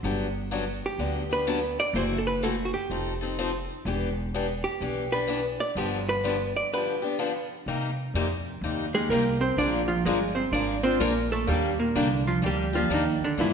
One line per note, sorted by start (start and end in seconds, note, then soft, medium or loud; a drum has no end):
0.03 0.80 G1 medium
0.03 0.26 D3 medium
0.03 0.26 F#3 medium
0.03 0.26 B3 medium
0.03 0.26 D4 medium
0.03 0.27 G4 medium
0.51 0.63 D3 medium
0.51 0.63 F#3 medium
0.51 0.64 B3 medium
0.51 0.64 D4 medium
0.51 0.64 G4 medium
0.86 1.33 G4 medium
0.98 1.75 D2 medium
0.98 1.21 D3 medium
0.98 1.21 F#3 medium
0.98 1.21 B3 medium
0.98 1.21 D4 medium
0.98 1.22 G4 medium
1.29 1.46 B3 soft
1.29 1.46 D4 soft
1.29 1.46 G4 medium
1.29 1.79 B4 medium
1.47 1.59 D3 medium
1.47 1.59 F#3 medium
1.47 1.59 B3 medium
1.47 1.59 D4 medium
1.47 1.59 G4 medium
1.80 1.95 D5 loud
1.93 2.70 F#1 medium
1.93 2.17 C3 medium
1.93 2.17 E3 medium
1.93 2.17 A3 medium
1.93 2.17 E4 medium
1.93 2.17 F#4 medium
1.93 2.02 C5 medium
2.19 2.26 A4 medium
2.27 2.42 B4 medium
2.43 2.54 C3 medium
2.43 2.55 E3 medium
2.43 2.55 A3 medium
2.43 2.55 E4 medium
2.43 2.55 F#4 loud
2.43 2.49 A4 medium
2.65 2.73 F#4 medium
2.74 3.65 G4 medium
2.90 3.66 F1 medium
2.90 3.12 F3 medium
2.90 3.13 C4 medium
2.90 3.13 D#4 medium
2.90 3.13 A4 medium
3.21 3.37 C4 medium
3.21 3.38 D#4 medium
3.21 3.37 A4 medium
3.39 3.50 F3 medium
3.39 3.50 C4 medium
3.39 3.50 D#4 medium
3.39 3.50 A4 medium
3.85 4.62 E1 loud
3.85 4.08 E3 medium
3.85 4.08 B3 medium
3.85 4.08 D4 medium
3.85 4.09 G4 medium
4.34 4.45 E3 medium
4.34 4.46 B3 medium
4.34 4.46 D4 medium
4.34 4.46 G4 loud
4.64 5.13 G4 medium
4.81 5.57 B1 medium
4.81 5.03 E3 medium
4.81 5.03 B3 medium
4.81 5.03 D4 medium
4.81 5.04 G4 medium
5.12 5.27 B3 soft
5.12 5.27 D4 medium
5.12 5.28 G4 medium
5.12 5.60 B4 medium
5.28 5.40 E3 medium
5.28 5.40 B3 medium
5.28 5.40 D4 medium
5.28 5.41 G4 medium
5.60 5.76 D5 loud
5.75 6.52 G1 medium
5.75 5.98 D3 medium
5.75 5.98 F3 medium
5.75 5.98 B3 medium
5.75 5.99 D4 medium
5.75 5.99 G4 medium
5.75 5.86 G4 medium
6.09 6.52 B4 loud
6.24 6.35 D3 medium
6.24 6.36 F3 medium
6.24 6.36 B3 medium
6.24 6.36 D4 medium
6.24 6.36 G4 medium
6.56 6.73 D5 medium
6.73 6.94 D3 soft
6.73 6.95 F3 medium
6.73 6.95 B3 medium
6.73 6.95 D4 medium
6.73 6.95 G4 medium
6.73 7.47 B4 medium
7.02 7.18 B3 soft
7.02 7.18 D4 medium
7.02 7.18 G4 medium
7.19 7.31 D3 medium
7.19 7.31 F3 medium
7.19 7.31 B3 medium
7.19 7.31 D4 medium
7.19 7.31 G4 medium
7.66 8.13 C3 medium
7.66 7.89 C3 medium
7.66 7.89 G3 medium
7.66 7.89 A#3 medium
7.66 7.89 D#4 medium
7.66 7.90 G4 medium
8.14 8.60 F2 medium
8.14 8.26 C3 medium
8.14 8.26 G3 medium
8.14 8.27 A#3 loud
8.14 8.27 D#4 medium
8.14 8.27 G4 loud
8.61 9.08 D#2 medium
8.61 8.85 C3 medium
8.61 8.85 G3 medium
8.61 8.85 A#3 medium
8.61 8.85 D#4 medium
8.61 8.85 G4 medium
8.94 9.10 G#3 medium
8.94 9.11 A#3 soft
8.94 9.10 D#4 medium
8.94 9.10 G4 medium
8.94 9.10 G#4 medium
9.09 9.56 C2 medium
9.09 9.22 C3 medium
9.09 9.23 G3 medium
9.09 9.40 A#3 medium
9.09 9.23 A#3 medium
9.09 9.23 D#4 medium
9.09 9.23 G4 medium
9.09 9.40 A#4 medium
9.41 9.57 C4 medium
9.41 9.57 C5 medium
9.57 10.03 A#1 medium
9.57 9.80 F3 medium
9.57 9.80 G#3 medium
9.57 9.87 D4 medium
9.57 9.80 D4 medium
9.57 9.81 F4 medium
9.57 9.81 A#4 medium
9.57 9.87 D5 medium
9.88 10.05 F3 medium
9.88 10.04 F4 medium
10.05 10.51 G1 medium
10.05 10.17 F3 medium
10.05 10.35 G#3 medium
10.05 10.17 G#3 medium
10.05 10.18 D4 medium
10.05 10.17 F4 loud
10.05 10.35 G#4 medium
10.05 10.18 A#4 loud
10.35 10.52 C4 medium
10.35 10.52 C5 medium
10.52 10.98 G#1 medium
10.52 10.75 F3 medium
10.52 10.75 G#3 medium
10.52 10.82 D4 medium
10.52 10.75 D4 medium
10.52 10.75 F4 medium
10.52 10.76 A#4 medium
10.52 10.82 D5 medium
10.83 11.00 C4 medium
10.83 10.99 D4 soft
10.83 11.00 F4 medium
10.83 11.00 A#4 medium
10.83 11.00 C5 medium
11.00 11.46 A#1 medium
11.00 11.12 F3 medium
11.00 11.12 G#3 medium
11.00 11.30 A#3 medium
11.00 11.12 D4 medium
11.00 11.12 F4 medium
11.00 11.30 A#4 medium
11.00 11.12 A#4 loud
11.32 11.48 A3 medium
11.32 11.48 A4 loud
11.47 11.94 D#2 medium
11.47 11.70 D#3 medium
11.47 11.69 G3 medium
11.47 11.78 G3 medium
11.47 11.69 A#3 medium
11.47 11.70 D4 medium
11.47 11.70 G4 medium
11.47 11.78 G4 medium
11.79 11.95 A#2 soft
11.79 11.95 A#3 medium
11.95 12.41 C2 medium
11.95 12.26 D3 medium
11.95 12.07 D#3 medium
11.95 12.07 G3 medium
11.95 12.07 A#3 loud
11.95 12.26 D4 medium
11.95 12.08 D4 loud
11.95 12.07 G4 loud
12.27 12.43 F3 medium
12.27 12.43 F4 medium
12.42 12.89 D2 medium
12.42 12.64 D#3 medium
12.42 12.65 G3 medium
12.42 12.65 A#3 medium
12.42 12.65 D4 medium
12.42 12.65 G4 medium
12.46 12.74 G3 medium
12.46 12.74 G4 medium
12.73 12.92 F3 medium
12.73 12.90 A#3 soft
12.73 12.90 D4 medium
12.73 12.91 F4 medium
12.73 12.90 G4 medium
12.90 13.19 D#2 medium
12.90 13.02 D#3 medium
12.90 13.02 G3 medium
12.90 13.02 A#3 medium
12.90 13.03 D4 loud
12.90 13.03 G4 loud
12.94 13.22 D#3 medium
12.94 13.22 D#4 medium
13.20 muted upright bass stroke soft
13.24 13.39 D3 medium
13.24 13.39 D4 medium
13.37 13.53 G2 medium
13.37 13.53 D3 medium
13.37 13.53 E3 medium
13.37 13.53 F3 medium
13.37 13.53 A#3 medium
13.37 13.53 D4 medium
13.37 13.53 E4 medium
13.37 13.53 G4 medium